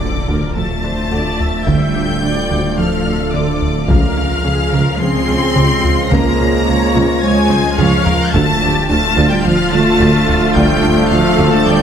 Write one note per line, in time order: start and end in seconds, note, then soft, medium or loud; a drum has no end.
0.00 3.91 D1 medium
0.00 0.11 D2 soft
0.00 0.08 D2 soft
0.00 0.52 D3 medium
0.00 3.85 F3 medium
0.00 3.86 F3 medium
0.00 3.85 A3 medium
0.00 3.86 A3 medium
0.00 3.85 D4 medium
0.00 0.17 D4 medium
0.00 3.86 F4 medium
0.00 0.29 A4 medium
0.00 0.51 D5 medium
0.00 3.86 D5 medium
0.00 0.52 D6 loud
0.00 impact medium
0.28 0.39 D2 medium
0.28 0.36 D2 medium
0.28 0.45 D3 loud
0.28 0.57 A#4 medium
0.56 0.67 D2 soft
0.56 0.64 D2 medium
0.56 0.73 F3 medium
0.56 1.67 A3 medium
0.56 0.84 A4 medium
0.56 1.67 A5 medium
0.56 1.65 A6 loud
0.83 0.94 D2 medium
0.83 0.91 D2 medium
0.83 1.01 D4 medium
0.83 1.11 C5 medium
1.11 1.22 D2 medium
1.11 1.20 D2 medium
1.11 1.29 D3 loud
1.11 1.40 D5 medium
1.40 2.23 E5 medium
1.40 taiko low medium
1.67 1.78 D2 medium
1.67 1.75 D2 medium
1.67 1.84 D3 medium
1.67 2.76 G3 medium
1.67 2.76 G5 medium
1.67 2.78 G6 loud
1.67 taiko loud
1.95 2.03 D2 medium
1.95 2.06 D2 medium
1.95 2.12 D4 medium
2.23 2.31 D2 medium
2.23 2.34 D2 medium
2.23 2.40 D4 medium
2.23 2.77 D5 medium
2.50 2.61 D2 medium
2.50 2.58 D2 medium
2.50 2.67 D3 loud
2.77 2.86 D2 medium
2.77 2.90 D2 soft
2.77 2.95 F3 medium
2.77 3.34 F3 medium
2.77 3.87 A4 medium
2.77 3.34 F5 medium
2.77 3.33 F6 loud
3.06 3.14 D2 medium
3.06 3.17 D2 medium
3.06 3.23 D4 medium
3.33 3.45 D2 medium
3.33 3.42 D2 medium
3.33 3.51 D3 loud
3.33 3.90 D3 medium
3.33 3.88 D5 medium
3.33 3.89 D6 loud
3.62 taiko low medium
3.88 3.96 C#2 medium
3.88 8.35 C#2 medium
3.88 4.01 C#2 medium
3.88 8.15 C#3 loud
3.88 4.06 C#3 medium
3.88 8.30 F3 medium
3.88 4.98 F3 medium
3.88 8.17 F3 medium
3.88 8.17 G#3 medium
3.88 8.34 G#3 medium
3.88 8.29 F4 medium
3.88 8.15 F4 medium
3.88 4.44 A#4 medium
3.88 8.29 F5 medium
3.88 5.01 F5 medium
3.88 4.98 F6 loud
3.88 taiko loud
4.17 4.25 C#2 medium
4.17 4.29 C#2 medium
4.17 4.34 C#4 medium
4.44 4.53 C#2 medium
4.44 4.56 C#2 medium
4.44 4.61 C#4 medium
4.44 4.73 G#4 medium
4.72 4.81 C#2 medium
4.72 4.84 C#2 medium
4.72 4.89 C#3 loud
4.72 5.01 A#4 medium
4.99 5.08 C#2 medium
4.99 5.12 C#2 medium
4.99 5.17 F3 medium
4.99 6.12 C4 loud
4.99 5.55 G#4 medium
4.99 6.11 C6 loud
4.99 6.09 C7 loud
5.28 5.40 C#2 medium
5.28 5.37 C#2 medium
5.28 5.45 C#4 medium
5.55 5.67 C#2 loud
5.55 5.64 C#2 medium
5.55 5.73 C#3 loud
5.55 5.84 G4 medium
5.83 6.11 F4 medium
5.83 taiko low medium
6.11 6.23 C#2 loud
6.11 6.20 C#2 loud
6.11 6.28 C#3 loud
6.11 7.23 A#3 medium
6.11 6.39 A#4 medium
6.11 7.23 A#5 loud
6.11 7.22 A#6 loud
6.11 taiko loud
6.39 6.51 C#2 medium
6.39 6.48 C#2 medium
6.39 6.56 C#4 medium
6.39 6.67 G#4 medium
6.67 6.78 C#2 medium
6.67 6.76 C#2 medium
6.67 6.84 C#4 medium
6.67 7.22 C#5 loud
6.95 7.06 C#2 loud
6.95 7.04 C#2 loud
6.95 7.12 C#3 loud
7.22 7.34 C#2 medium
7.22 7.31 C#2 medium
7.22 7.40 F3 medium
7.22 7.77 G#3 loud
7.22 7.50 C#5 loud
7.22 7.77 G#5 loud
7.22 7.79 G#6 loud
7.50 7.59 C#2 medium
7.50 7.62 C#2 medium
7.50 7.68 C#4 medium
7.50 7.78 C5 medium
7.50 taiko high loud
7.77 7.90 C#2 loud
7.77 7.87 C#2 loud
7.77 7.95 C#3 loud
7.77 8.34 F3 loud
7.77 8.05 C#5 loud
7.77 8.34 F5 loud
7.77 8.34 F6 loud
7.77 taiko low-mid loud
8.05 8.34 A#4 loud
8.05 taiko low loud
8.32 11.82 D1 medium
8.32 8.45 D2 loud
8.32 8.42 D2 loud
8.32 8.51 D3 loud
8.32 11.82 F3 medium
8.32 11.82 F3 loud
8.32 11.82 A3 medium
8.32 8.88 A3 medium
8.32 11.82 A3 loud
8.32 11.82 D4 loud
8.32 11.82 F4 loud
8.32 8.62 A4 medium
8.32 11.82 F5 medium
8.32 8.88 A5 loud
8.32 8.89 A6 loud
8.32 taiko loud
8.62 8.73 D2 medium
8.62 8.71 D2 medium
8.62 8.78 D4 medium
8.62 8.89 G4 loud
8.89 9.00 D2 medium
8.89 8.98 D2 medium
8.89 9.30 A3 loud
8.89 9.06 D4 medium
8.89 11.12 F4 loud
8.89 9.30 A5 loud
8.89 9.31 A6 loud
9.17 9.25 D2 loud
9.17 9.28 D2 loud
9.17 9.34 D3 loud
9.30 9.45 G3 loud
9.30 9.45 G5 loud
9.30 9.46 G6 loud
9.44 9.53 D2 medium
9.44 9.56 D2 medium
9.44 9.61 F3 medium
9.44 9.73 F3 loud
9.44 9.72 F5 loud
9.44 9.72 F6 loud
9.72 9.80 D2 medium
9.72 9.84 D2 medium
9.72 10.56 A3 loud
9.72 9.89 D4 medium
9.72 10.55 A5 loud
9.72 10.56 A6 loud
10.00 10.08 D2 loud
10.00 10.11 D2 loud
10.00 10.17 D3 loud
10.28 taiko low medium
10.55 10.63 D2 loud
10.55 10.67 D2 loud
10.55 10.72 D3 loud
10.55 11.10 G3 loud
10.55 11.10 G5 loud
10.55 11.12 G6 loud
10.55 taiko loud
10.83 10.91 D2 medium
10.83 10.95 D2 medium
10.83 11.00 D4 medium
11.10 11.18 D2 medium
11.10 11.22 D2 medium
11.10 11.52 F3 loud
11.10 11.28 D4 medium
11.10 11.67 A4 loud
11.10 11.52 F5 loud
11.10 11.53 F6 loud
11.38 11.46 D2 loud
11.38 11.50 D2 loud
11.38 11.55 D3 loud
11.52 11.67 A3 loud
11.52 11.67 A5 loud
11.52 11.67 A6 loud
11.66 11.74 D2 medium
11.66 11.78 D2 medium
11.66 11.82 F3 medium
11.66 11.82 G3 loud
11.66 11.82 D5 loud
11.66 11.82 G5 loud
11.66 11.82 G6 loud